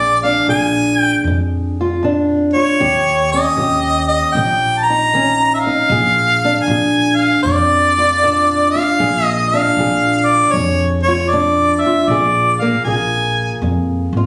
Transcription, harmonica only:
0.00 0.23 D5 medium
0.23 0.46 F5 medium
0.49 0.99 G#5 medium
0.99 1.22 G5 medium
2.54 3.28 C#5 medium
3.32 4.06 D#5 medium
4.08 4.32 D#5 medium
4.32 4.79 G5 medium
4.78 4.86 A5 medium
4.84 5.54 A#5 loud
5.54 5.61 E5 medium
5.59 6.65 F5 loud
6.64 7.17 G#5 medium
7.16 7.42 F5 medium
7.43 8.69 D5 medium
8.70 9.25 F5 medium
9.25 9.45 D#5 medium
9.48 10.28 F5 medium
10.27 10.53 D5 medium
10.52 10.88 C#5 medium
11.03 11.30 C#5 medium
11.29 11.82 D5 medium
11.80 12.10 E5 medium
12.08 12.62 D5 medium
12.61 12.84 F5 medium
12.84 13.58 G#5 medium

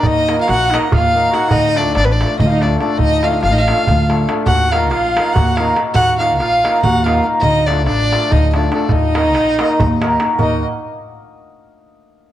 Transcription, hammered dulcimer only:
0.29 0.42 A#3 medium
0.29 0.43 D#4 medium
0.29 0.43 F#4 medium
0.29 0.43 A#4 medium
0.73 0.86 A#3 medium
0.73 0.86 D#4 medium
0.73 0.87 F#4 medium
0.73 0.87 A#4 medium
1.14 1.27 A#3 medium
1.14 1.28 D#4 medium
1.14 1.28 F#4 medium
1.14 1.28 A#4 medium
1.33 1.46 A#3 medium
1.33 1.46 D#4 medium
1.33 1.47 F#4 medium
1.33 1.47 A#4 medium
1.77 1.90 A3 medium
1.77 1.90 D4 medium
1.77 1.91 F4 medium
1.77 1.91 A4 medium
2.21 2.34 A3 medium
2.21 2.34 D4 medium
2.21 2.35 F4 medium
2.21 2.35 A4 medium
2.62 2.75 A3 medium
2.62 2.75 D4 medium
2.62 2.76 F4 medium
2.62 2.76 A4 medium
2.81 2.93 A3 medium
2.81 2.94 D4 medium
2.81 2.94 F4 medium
2.81 2.94 A4 medium
3.24 3.37 A3 medium
3.24 3.37 D4 medium
3.24 3.38 F4 medium
3.24 3.38 A4 medium
3.69 3.82 A3 medium
3.69 3.82 D4 medium
3.69 3.82 F4 medium
3.69 3.83 A4 medium
4.09 4.22 A3 medium
4.09 4.23 D4 medium
4.09 4.23 F4 medium
4.09 4.23 A4 medium
4.29 4.41 A3 medium
4.29 4.41 D4 medium
4.29 4.42 F4 medium
4.29 4.42 A4 medium
4.71 4.84 A#3 medium
4.71 4.85 D#4 medium
4.71 4.85 F#4 medium
4.71 4.85 A#4 medium
5.17 5.30 A#3 soft
5.17 5.30 D#4 soft
5.17 5.30 F#4 soft
5.17 5.30 A#4 medium
5.59 5.71 A#3 medium
5.59 5.71 D#4 medium
5.59 5.71 F#4 medium
5.59 5.71 A#4 medium
5.76 5.89 A#3 medium
5.76 5.89 D#4 medium
5.76 5.89 F#4 medium
5.76 5.89 A#4 medium
6.19 6.33 A#3 medium
6.19 6.33 D#4 medium
6.19 6.33 F#4 medium
6.19 6.33 A#4 medium
6.63 6.77 A#3 medium
6.63 6.77 D#4 medium
6.63 6.77 F#4 medium
6.63 6.78 A#4 medium
7.06 7.18 A#3 medium
7.06 7.18 D#4 medium
7.06 7.19 F#4 medium
7.06 7.19 A#4 medium
7.24 7.37 A#3 medium
7.24 7.37 D#4 soft
7.24 7.37 F#4 medium
7.24 7.38 A#4 medium
7.69 7.81 A3 medium
7.69 7.82 D4 soft
7.69 7.82 F4 medium
7.69 7.82 A4 medium
8.13 8.26 A3 medium
8.13 8.26 D4 medium
8.13 8.26 F4 medium
8.13 8.27 A4 medium
8.55 8.67 A3 medium
8.55 8.67 D4 medium
8.55 8.67 F4 medium
8.55 8.67 A4 medium
8.72 8.85 A3 medium
8.72 8.85 D4 medium
8.72 8.85 F4 medium
8.72 8.86 A4 medium
9.15 9.29 A#3 medium
9.15 9.29 D#4 medium
9.15 9.29 F#4 medium
9.15 9.29 A#4 medium
9.59 9.73 A#3 medium
9.59 9.74 D#4 medium
9.59 9.74 F#4 medium
9.59 9.74 A#4 medium
10.02 10.15 A#3 medium
10.02 10.15 D#4 medium
10.02 10.15 F#4 medium
10.02 10.16 A#4 loud
10.20 10.33 A#3 medium
10.20 10.33 D#4 medium
10.20 10.34 F#4 medium
10.20 10.34 A#4 medium
10.38 10.63 A#3 medium
10.38 10.63 D#4 medium
10.38 10.63 F#4 medium
10.38 10.63 A#4 medium

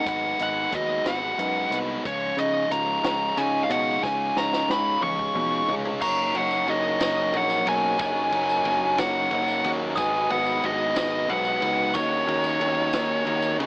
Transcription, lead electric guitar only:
0.09 0.42 F#5 medium
0.43 0.75 F#5 medium
0.75 1.08 D#5 medium
1.07 1.77 F#5 medium
2.06 2.39 C#5 medium
2.40 2.70 D#5 medium
2.72 3.40 A#5 loud
3.38 3.62 G#5 medium
3.64 3.71 F5 medium
3.71 4.03 F#5 medium
4.04 4.38 G#5 loud
4.37 4.71 A#5 medium
4.71 5.03 B5 loud
5.03 5.73 C#6 medium
6.02 6.36 A#5 loud
6.36 6.69 F#5 medium
6.70 7.02 D#5 loud
7.03 7.36 D#5 medium
7.37 7.68 F#5 loud
7.69 8.00 G#5 loud
8.01 8.99 G#5 loud
9.00 9.69 F#5 medium
9.98 10.31 G#5 loud
10.31 10.65 F#5 medium
10.65 10.97 D#5 medium
10.98 11.31 D#5 medium
11.30 11.91 F#5 medium
11.97 13.56 C#5 medium

